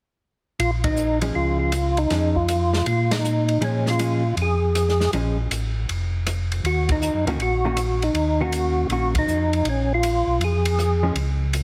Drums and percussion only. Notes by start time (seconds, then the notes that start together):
0.60 ride
0.84 kick, ride
0.96 hi-hat pedal
1.22 ride
1.72 cross-stick, hi-hat pedal, ride
1.97 ride
2.10 snare, ride
2.35 kick
2.48 hi-hat pedal, ride
2.73 snare
2.86 ride
3.11 snare, ride
3.24 hi-hat pedal
3.49 ride
3.62 ride
3.86 snare
3.99 hi-hat pedal, ride
4.37 ride
4.75 cross-stick, hi-hat pedal, ride
4.89 snare
5.00 snare
5.13 ride
5.51 hi-hat pedal, ride
5.89 ride
6.27 cross-stick, hi-hat pedal, ride
6.52 ride
6.65 ride
6.89 kick, ride
7.02 hi-hat pedal
7.27 ride
7.40 ride
7.77 cross-stick, hi-hat pedal, ride
8.02 ride
8.15 ride
8.52 hi-hat pedal, ride
8.90 ride
9.15 kick, ride
9.28 hi-hat pedal
9.53 ride
9.65 ride
10.03 hi-hat pedal, ride
10.41 ride
10.65 ride
10.79 cross-stick, hi-hat pedal
11.16 ride
11.53 hi-hat pedal, ride